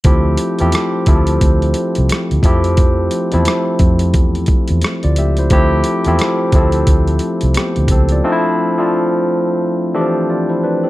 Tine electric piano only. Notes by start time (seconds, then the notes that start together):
0.05 F3 A3 C4 E4 G4
0.60 F3 A3 C4 E4 G4
1.07 F3 A3 C4 E4 G4
1.15 A4
2.44 F3 A3 C4 E4 G4
3.33 F3 A3 C4 E4 A4
5.04 F4 D5
5.19 G4 E5
5.39 E4 C5
5.52 F3 A3 C4 E4 G4
6.06 F3 A3 C4 E4 G4
6.54 F3 A3 C4 E4 A4
7.57 B3 G4
7.91 C4 A4
8.12 F4 D5
8.24 F3 A3 C4 D4 D#4
8.32 E4
8.78 F3 A3 C4 D4 F4
9.94 E3 A3 C4 D4 G4
10.01 F3
10.30 F4 D5
10.49 E4 C5
10.64 D4 B4
10.84 C4 A4